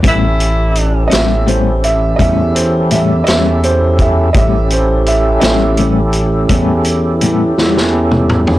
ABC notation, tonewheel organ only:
X:1
M:12/8
L:1/8
Q:3/8=56
K:Amix
V:1 name="Tonewheel organ"
[CEGA]12 | [CEGA]12 |]